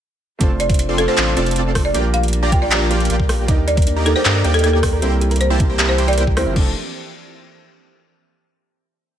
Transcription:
0.39 F1 C3 A3 C4 D4 F4 A4 C5 D5 A5, kick, closed hi-hat
0.60 D5, closed hi-hat
0.70 kick, closed hi-hat
0.74 closed hi-hat
0.79 closed hi-hat
0.89 C4 F4 A4 D5 C6
0.97 A3 C4 D4 F4 A4 C5, closed hi-hat
1.08 C4 F4 A4 C5 D5 A5
1.18 A1 C4 F4 A4 D5 C6, clap, closed hi-hat
1.35 F1 A3 C4 D4 F4 A4 C5 D5 A5, closed hi-hat
1.46 closed hi-hat
1.51 closed hi-hat
1.56 C4 F4 A4 D5 A5, closed hi-hat
1.75 kick, cross-stick, open hi-hat
1.85 D5
1.92 A#1 F3 G3 A#3 D4 F4 G4 D5 G5, closed hi-hat
1.96 A#4
2.14 F5, closed hi-hat
2.23 closed hi-hat
2.28 closed hi-hat
2.33 closed hi-hat
2.43 A#3 F4 G4 D5 A#5
2.51 G3 A#3 D4 F4 A#4 G5, kick, closed hi-hat
2.62 A#3 F4 G4 D5 G5
2.71 A#3 F4 G4 D5 A#5, clap, closed hi-hat
2.89 G3 A#3 D4 F4 G4 D5 G5, closed hi-hat
2.93 A#4
3.00 closed hi-hat
3.05 closed hi-hat
3.10 A#1 A#3 F4 G4 D5 G5, closed hi-hat
3.20 kick
3.29 cross-stick, open hi-hat
3.46 D#2 D#3 G3 A#3 D4 D#4 G4 D5 G5, kick, closed hi-hat
3.50 A#4
3.58 G4
3.68 D5, closed hi-hat
3.77 A#4, kick, closed hi-hat
3.82 closed hi-hat
3.87 D4, closed hi-hat
3.96 A#3 D#4 G4 D5 A#5
4.05 G3 A#3 D4 D#4 A4 A#4, closed hi-hat
4.16 A#3 D#4 G4 C5 D5 G5
4.25 G2 A#3 D#4 G4 D5 A#5, clap, closed hi-hat
4.35 A#4
4.43 D#2 G3 A#3 D4 D#4 G4 D5 G5, closed hi-hat
4.47 A#4
4.54 A4, closed hi-hat
4.59 closed hi-hat
4.64 A#3 D#4 G4 A4 D5 G5, closed hi-hat
4.73 G4 A4
4.83 kick, cross-stick, open hi-hat
4.93 A#4
5.00 C2 E3 G3 A#3 C4 E4 G4 C5 G5, closed hi-hat
5.04 A#4
5.21 G4, closed hi-hat
5.31 A#4, closed hi-hat
5.36 closed hi-hat
5.41 C5, closed hi-hat
5.50 A#3 E4 G4 C5 A5
5.59 G3 A#3 C4 E4 A#4, kick, closed hi-hat
5.70 A#3 E4 G4 C5 G5
5.79 A#3 E4 G4 C5 A5, clap, closed hi-hat
5.89 A#4 C5
5.98 A#3 E4 G4 C5 G5, closed hi-hat
6.08 G4 D5, closed hi-hat
6.13 closed hi-hat
6.18 A#3 E4 G4 A#4 C5 G5, closed hi-hat
6.27 G4, kick
6.36 D2 G3 A#3 C4 E4 A#4 C5, cross-stick, open hi-hat
6.47 G1 E5
6.53 F1 F3 A3 C4 D4 F4 A4 D5 A5, kick, crash
6.58 D4 A4

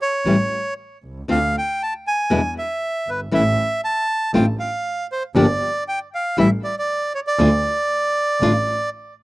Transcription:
0.02 C#5
0.25 A1 E3 G3 C#4 E4
1.03 C2
1.28 D2 D3 A3 C4 F4 F5
1.58 G5
1.83 A5
2.07 G#5
2.30 E2 B2 D3 G#3 B3 E4
2.58 E5
3.07 G1 B4
3.31 A1 E3 A3 C#4 E4 E5
3.84 A5
4.34 A1 D3 A3 C4 F4 G5
4.60 F5
5.12 C5
5.35 G1 D3 F3 A#3 D4 G4 D5
5.88 G5
6.15 F5
6.37 A1 E3 G3 C#4 E4 E5
6.64 D5
6.79 D5
7.15 C#5
7.27 D5
7.39 D2 D3 A3 D4 F4
8.41 A1 D3 A3 D4 F4

